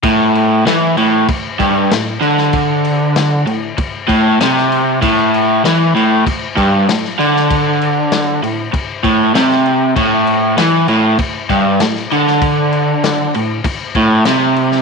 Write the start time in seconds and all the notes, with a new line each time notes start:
0.03 A2, kick, crash
0.35 crash
0.66 E3, snare, crash
0.97 A2, crash
1.29 muted overdriven electric guitar stroke, kick, crash
1.60 G2, kick, crash
1.91 A2, snare, crash
2.22 D3, crash
2.38 snare
2.53 kick, crash
2.85 crash
3.16 snare, crash
3.46 A2, crash
3.78 muted overdriven electric guitar stroke, kick, crash
4.08 A2, kick, crash
4.41 C3, snare, crash
4.57 snare
4.72 crash
5.02 A2, kick, crash
5.34 crash
5.65 E3, snare, crash
5.95 A2, crash
6.27 muted overdriven electric guitar stroke, kick, crash
6.57 G2, kick, crash
6.89 A2, snare, crash
7.05 snare
7.19 D3, crash
7.36 snare
7.51 kick, crash
7.81 crash
8.12 snare, crash
8.43 A2, crash
8.73 muted overdriven electric guitar stroke, kick, crash
9.04 A2, kick, crash
9.34 C3, snare, crash
9.51 snare
9.66 crash
9.96 A2, kick, crash
10.27 crash
10.57 E3, snare, crash
10.88 A2, crash
11.19 muted overdriven electric guitar stroke, kick, crash
11.50 G2, kick, crash
11.80 A2, snare, crash
11.96 snare
12.12 D3, crash
12.27 snare
12.42 kick, crash
12.72 crash
13.04 snare, crash
13.34 A2, crash
13.64 muted overdriven electric guitar stroke, kick, crash
13.95 A2, kick, crash
14.25 C3, snare, crash
14.56 crash
14.72 snare